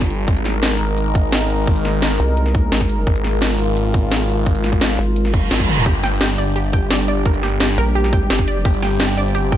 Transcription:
Already playing: G3 D4 F4
0.02 kick, snare, closed hi-hat
0.10 G1, closed hi-hat
0.28 G#1 G#3 D#4 A#4, kick, closed hi-hat
0.37 closed hi-hat
0.45 snare, closed hi-hat
0.63 snare, closed hi-hat
0.72 closed hi-hat
0.80 G#1, closed hi-hat
0.98 closed hi-hat
1.15 kick, closed hi-hat
1.32 snare, closed hi-hat
1.41 closed hi-hat
1.50 closed hi-hat
1.67 kick, closed hi-hat
1.76 closed hi-hat
1.85 snare, closed hi-hat
2.02 snare, closed hi-hat
2.11 closed hi-hat
2.20 C2, closed hi-hat
2.37 closed hi-hat
2.46 snare
2.55 kick, closed hi-hat
2.72 G#1, snare, closed hi-hat
2.81 kick, snare, closed hi-hat
2.89 closed hi-hat
3.07 G#1 F4, kick, closed hi-hat
3.16 closed hi-hat
3.24 snare, closed hi-hat
3.42 snare, closed hi-hat
3.51 closed hi-hat
3.59 G#1, closed hi-hat
3.77 closed hi-hat
3.94 kick, closed hi-hat
4.12 snare, closed hi-hat
4.20 closed hi-hat
4.29 closed hi-hat
4.46 kick, closed hi-hat
4.55 closed hi-hat
4.64 snare, closed hi-hat
4.73 kick, closed hi-hat
4.81 snare, closed hi-hat
4.90 closed hi-hat
4.99 G#1, closed hi-hat
5.16 closed hi-hat, reverse cymbal
5.25 snare
5.34 kick, closed hi-hat
5.51 G#1, snare, closed hi-hat
5.60 kick, snare, closed hi-hat, high tom
5.68 closed hi-hat, mid tom
5.77 mid tom
5.86 G1 G3 D4 G4, kick, closed hi-hat
5.95 closed hi-hat
6.03 G5, snare, closed hi-hat
6.21 G4, snare, closed hi-hat
6.29 closed hi-hat
6.38 G1 D5, closed hi-hat
6.56 G4, closed hi-hat
6.73 G5, kick, closed hi-hat
6.91 D5, snare, closed hi-hat
6.99 closed hi-hat
7.08 D5, closed hi-hat
7.25 A#4, kick, closed hi-hat
7.34 closed hi-hat
7.43 G4, snare, closed hi-hat
7.60 G4, snare, closed hi-hat
7.69 closed hi-hat
7.78 A#1 A#4, closed hi-hat
7.95 G4, closed hi-hat
8.04 snare
8.13 G5, kick, closed hi-hat
8.30 G1 G4, snare, closed hi-hat
8.39 kick, snare, closed hi-hat
8.48 D5, closed hi-hat
8.65 G1 C4 G4, kick, closed hi-hat
8.74 closed hi-hat
8.82 G5, snare, closed hi-hat
9.00 G4, snare, closed hi-hat
9.09 closed hi-hat
9.17 G1 D5, closed hi-hat
9.35 G4, closed hi-hat
9.52 G5, kick, closed hi-hat

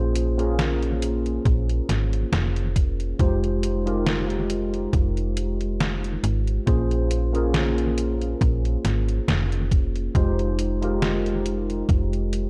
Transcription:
Already playing: A#1 A#3 C#4 F4 G#4 C5
0.15 closed hi-hat
0.37 A#3 C#4 F4 G#4 A#4, closed hi-hat
0.59 snare, closed hi-hat
0.83 closed hi-hat
1.02 closed hi-hat
1.26 closed hi-hat
1.45 A#1, kick, closed hi-hat
1.69 closed hi-hat
1.89 G#1, snare, closed hi-hat
2.13 closed hi-hat
2.32 F1, snare, closed hi-hat
2.56 closed hi-hat
2.76 kick, closed hi-hat
3.00 closed hi-hat
3.19 F1 G#3 D#4 F4 G4 C5, kick, closed hi-hat
3.44 closed hi-hat
3.63 closed hi-hat
3.85 G#3 D#4 F4 G4 A#4, closed hi-hat
4.07 snare, closed hi-hat
4.30 closed hi-hat
4.50 closed hi-hat
4.74 closed hi-hat
4.93 F1, kick, closed hi-hat
5.17 closed hi-hat
5.37 closed hi-hat
5.61 closed hi-hat
5.80 snare, closed hi-hat
6.04 closed hi-hat
6.24 G#1, closed hi-hat
6.47 closed hi-hat
6.66 A#1 A#3 C#4 F4 G#4 C5, kick, closed hi-hat
6.91 closed hi-hat
7.11 closed hi-hat
7.33 A#3 C#4 F4 G#4 A#4, closed hi-hat
7.54 snare, closed hi-hat
7.78 closed hi-hat
7.98 closed hi-hat
8.22 closed hi-hat
8.41 A#1, kick, closed hi-hat
8.65 closed hi-hat
8.85 G#1, snare, closed hi-hat
9.09 closed hi-hat
9.28 F1, snare, closed hi-hat
9.52 closed hi-hat
9.71 kick, closed hi-hat
9.96 closed hi-hat
10.14 F1 G#3 D#4 F4 G4 C5, kick, closed hi-hat
10.39 closed hi-hat
10.59 closed hi-hat
10.81 G#3 D#4 F4 G4 A#4, closed hi-hat
11.02 snare, closed hi-hat
11.26 closed hi-hat
11.46 closed hi-hat
11.70 closed hi-hat
11.89 F1, kick, closed hi-hat
12.13 closed hi-hat
12.33 closed hi-hat

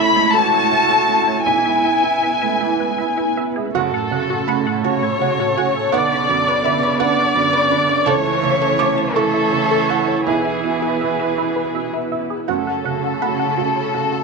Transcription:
Already playing: C#2 A3 E4 C#5 E5 B5
0.00 A3 C#4
0.16 G#3 A3 A5
0.33 E3 E4 F#4 A4 A5
0.52 A3 E5
0.70 C#4 E5 A5
0.89 E4 A4
1.08 A3 C#4 A5
1.27 A3 C#5 E5
1.46 B1 E3 B3 E4 B4 G#5
1.65 G#3 E4 E5
1.85 B3 E5
2.04 E4
2.23 B3 E5
2.42 G#3 A3 E5
2.60 E3 E4
2.79 G#3 B3 B4
2.98 B3 E5
3.17 E4
3.37 B3 E5
3.56 G#3 G#4 E5
3.75 F#2 C#3 A3 C#4 F#4 A4 F#5
3.93 A2 A4 F#5
4.11 C#3 F#4 F#5
4.30 A2 F#4 A4
4.47 C#3 A3 F#4 F#5 B5
4.66 A2 A4 F#5
4.83 C#3 F#4 C#5 A5
5.02 A2 A4 C#5
5.20 C#3 F#4 F#5
5.38 A2 F#4 A4
5.57 C#3 F#4 F#5 G#5
5.75 A2 A4
5.92 B1 D3 B3 D4 B4 D5 F#5
6.11 C#3 C#5 B5
6.28 F#2 D3 D5 B5
6.46 C#3 B4 C#5
6.63 D3 B3 D5 E5 B5
6.80 C#3 C#5 B5
6.99 D3 D4 B4 D5 F#5
7.16 C#3 C#5 F#5
7.35 F#2 D3 D5 B5
7.53 C#3 B4 C#5
7.71 D3 D4 D5 B5
7.88 C#3 C#5 D5
8.06 C#2 E3 A3 C#4 E4 A4 C#5 A5
8.25 A5
8.43 C#3 A5
8.62 A4
8.79 A3 A5 D6
8.98 A5
9.15 E3 E4 A4 C#5 C#6
9.34 E5
9.52 C#3 A5
9.71 A4
9.89 E4 F#5 A5
10.08 C#5
10.26 B1 E3 B3 E4 G#4 B4 G#5
10.45 E5
10.64 B2 E5
10.82 E4
11.01 B3 E5
11.20 E5
11.38 E4
11.56 B4
11.74 B2 E5
11.93 E4
12.12 E4 E5
12.30 G#4
12.48 F#2 C#3 A3 C#4 F#4 A4 F#5
12.67 C#4 F#5
12.84 C#3 F#4 F#5
13.03 F#4 A4
13.21 A3 F#4 F#5 B5
13.39 C#4 F#5
13.57 A3 F#4 A5
13.76 C#4 C#5
13.94 C#3 F#4 F#5
14.12 F#4 A4

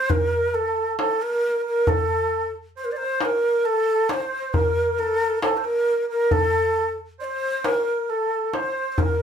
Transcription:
Already playing: C5
0.10 A#4, darbuka dum
0.53 A4
0.98 A4, darbuka tek
1.19 A#4
1.63 A#4
1.67 A#4
1.87 A4, darbuka dum
2.76 C5
2.85 A#4
2.90 C5 D5
2.97 A#4 C5
3.03 C5
3.19 A#4 C5, darbuka tek
3.25 A#4
3.63 A4
4.09 C5 D5, darbuka tek
4.14 C5
4.54 A#4, darbuka dum
4.99 A4, darbuka ka
5.41 A4, darbuka tek
5.57 C5
5.63 A#4
6.09 A#4
6.31 A4, darbuka dum
7.19 C5 D5
7.24 C5
7.64 A#4, darbuka tek
8.09 A4
8.53 C5, darbuka tek
8.92 C5
8.97 A#4, darbuka dum

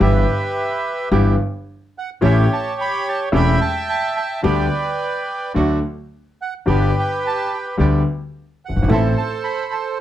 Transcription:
0.00 G1 G2 E3 G3 B3 E4 G4 B4 E5
1.11 G1 G2 E3 G3 B3 E4 G4
1.98 F#5
2.21 A1 A2 E3 A3 C#4 G4 C#5 E5
2.53 A5
2.81 B5
3.09 A5
3.32 E1 E2 E3 A3 C#4 G4 E5 G5
3.36 B5
3.61 A5
3.90 A5
4.17 A5
4.43 D2 D3 G3 B3 D4 G4 B4 D5 G5
5.54 D2 D3 F#3 A3 D4 F#4
6.42 F#5
6.66 G1 G2 D3 G3 B3 D4 G4 B4
6.70 G4 D5
6.99 G5
7.27 A5
7.54 G5
7.77 D2 D3 G3 B3 D4 G4
8.65 F#1 F#5
8.70 F#1
8.76 G1
8.82 G#1
8.88 A1 A2 E3 A3 C4 E4 A4 E5
8.92 A4 C5
9.17 A5
9.44 B5
9.72 A5

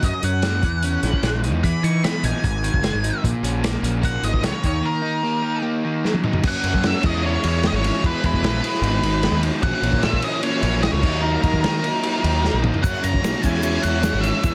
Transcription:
0.03 F#2 D#5, kick, closed hi-hat
0.23 F#2 C#4 F#5, closed hi-hat
0.42 A#3, snare, closed hi-hat
0.63 E2 E3, kick, closed hi-hat
0.82 C#4, closed hi-hat
1.03 A#1 E3, snare, closed hi-hat
1.13 kick
1.23 A#1 G#3, snare, closed hi-hat
1.44 D#4, closed hi-hat
1.53 E2
1.64 E2 E3 B5, kick, closed hi-hat
1.83 E3 D#4 C#6, closed hi-hat
2.03 B3 B5, snare, closed hi-hat
2.23 A#1 D#4 G#5, closed hi-hat
2.43 G#1 G#2 G#5, kick, closed hi-hat
2.63 D#3, closed hi-hat
2.74 F#1, kick
2.82 G#3, snare, closed hi-hat
2.94 G#1
3.04 D#4, closed hi-hat
3.24 A#1 A#2, kick, closed hi-hat
3.43 A#1 C#4, closed hi-hat
3.63 A#3, snare, closed hi-hat
3.82 A#1 C#4, closed hi-hat
4.01 A#3 F#5, kick, closed hi-hat
4.22 G#1 A#2 D#5, snare, closed hi-hat
4.34 kick
4.42 C#2 E3 C#5, snare, closed hi-hat
4.62 D#2 D#3, kick, closed hi-hat
4.66 C#5
4.82 D#3 A#4
5.02 D#4
5.24 A#3
5.43 D#4
5.63 A#3
5.84 D#3
6.04 F#3, snare
6.14 high tom
6.24 D#4, mid tom
6.33 floor tom
6.43 F#2 C#3 F#3 A#3 C#4 F#4 C#5 F#5, kick, crash
6.48 F#5
6.57 F#5
6.63 F#2 C#3 F#3 A#3 C#4, ride
6.74 F#2, kick
6.83 F#2 C#3 F#3 A#3 C#4, snare, ride
6.87 E5
7.03 E2 E3 G#3 C#4 E4 D#5, kick, crash
7.23 E3 G#3 C#4 E4 C#5
7.43 E2 E3 G#3 C#4 E4, ride
7.49 C#5
7.63 E3 G#3 C#4 E4, snare, ride
7.67 D#5
7.73 G#1 C#5
7.84 E3 G#3 C#4 E4, ride
8.03 E2 E3 G#3 B3 E4 B4, kick, ride
8.23 E2 E3 G#3 B3 E4 B4, kick, ride
8.34 E2, kick
8.42 A#1 E3 G#3 B3 E4 B4, snare, ride
8.63 E3 G#3 B3 E4, ride
8.74 snare
8.82 G#1 G#2 D#3 G#3 B3 D#4, ride
9.02 G#1 G#2 D#3 G#3 B3 D#4, ride
9.23 G#2 D#3 G#3 B3 D#4, snare, ride
9.32 D#2
9.43 G#2 D#3 G#3 B3 D#4, ride
9.62 A#1 A#2 E3 A#3 C#4 A#4 E5 F#5, kick, ride
9.74 F#5
9.82 A#1 A#2 E3 A#3 C#4, ride
9.93 A#1, kick
10.03 A#2 E3 A#3 C#4 E5, snare, ride
10.13 kick
10.22 A#2 E3 A#3 C#4 D#5, ride
10.42 A#2 E3 A#3 C#4 C#5, ride
10.61 A#1 A#2 E3 A#3 C#4 C#5, ride
10.82 A#2 E3 A#3 C#4 D#5, snare, ride
10.91 C#2 C#5
11.03 D#2 D#3 F#3 A#3 D#4 D#5, kick, crash
11.21 D#3 F#3 A#3 D#4 A#4
11.42 D#2 D#3 F#3 A#3 D#4 A#4, kick, ride
11.54 D#2, kick
11.60 D#3 F#3 A#4, snare, ride
11.65 A#3 D#4
11.83 D#3 F#3 A#3 D#4, ride
12.02 D#3 F#3 A#3 D#4, ride
12.22 D#2 D#3 F#3 A#3 D#4, ride
12.42 D#3 F#3 A#3 D#4, snare
12.53 A#1
12.62 D#3 F#3 A#3 D#4, mid tom
12.74 floor tom
12.82 F#2 C#3 F#3 A#3 C#4 C#5 F#5, kick, crash, shaker
12.94 shaker
13.02 F#2 C#3 F#3 A#3 C#4 A#5, ride, shaker
13.14 F#2, kick
13.21 B1 F#2 C#3 F#3 A#3 C#4, snare, ride, shaker
13.34 shaker
13.42 E2 E3 G#3 C#4 E4 G#4 C#5 G#5, kick, ride, shaker
13.54 snare
13.61 E3 G#3 C#4 E4 G#5, ride, shaker
13.81 E2 E3 G#3 C#4 E4 F#5, ride, shaker
14.02 E3 G#3 C#4 E4, snare, ride, shaker
14.14 G#1
14.21 E3 G#3 C#4 E4 E5, ride, shaker
14.42 E2 E3 G#3 B3 E4, kick, ride, shaker

